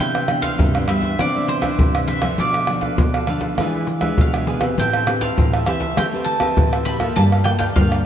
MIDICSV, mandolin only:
0, 0, Header, 1, 2, 480
1, 0, Start_track
1, 0, Key_signature, 0, "major"
1, 0, Tempo, 597610
1, 1915, Time_signature, 4, 2, 24, 8
1, 6471, End_track
2, 0, Start_track
2, 0, Title_t, "Mandolin"
2, 0, Program_c, 0, 25
2, 0, Note_on_c, 0, 79, 92
2, 331, Note_off_c, 0, 79, 0
2, 340, Note_on_c, 0, 77, 90
2, 681, Note_off_c, 0, 77, 0
2, 714, Note_on_c, 0, 76, 87
2, 960, Note_off_c, 0, 76, 0
2, 967, Note_on_c, 0, 74, 83
2, 1184, Note_off_c, 0, 74, 0
2, 1195, Note_on_c, 0, 72, 85
2, 1668, Note_on_c, 0, 76, 83
2, 1689, Note_off_c, 0, 72, 0
2, 1919, Note_off_c, 0, 76, 0
2, 1925, Note_on_c, 0, 74, 78
2, 2849, Note_off_c, 0, 74, 0
2, 3380, Note_on_c, 0, 77, 67
2, 3847, Note_off_c, 0, 77, 0
2, 3850, Note_on_c, 0, 79, 84
2, 4184, Note_off_c, 0, 79, 0
2, 4187, Note_on_c, 0, 77, 89
2, 4526, Note_off_c, 0, 77, 0
2, 4555, Note_on_c, 0, 76, 78
2, 4798, Note_off_c, 0, 76, 0
2, 4801, Note_on_c, 0, 79, 94
2, 4865, Note_off_c, 0, 79, 0
2, 5016, Note_on_c, 0, 81, 89
2, 5473, Note_off_c, 0, 81, 0
2, 5504, Note_on_c, 0, 83, 98
2, 5570, Note_off_c, 0, 83, 0
2, 5750, Note_on_c, 0, 81, 97
2, 5815, Note_off_c, 0, 81, 0
2, 5978, Note_on_c, 0, 79, 89
2, 6019, Note_off_c, 0, 79, 0
2, 6094, Note_on_c, 0, 79, 90
2, 6134, Note_off_c, 0, 79, 0
2, 6231, Note_on_c, 0, 77, 72
2, 6471, Note_off_c, 0, 77, 0
2, 6471, End_track
0, 0, End_of_file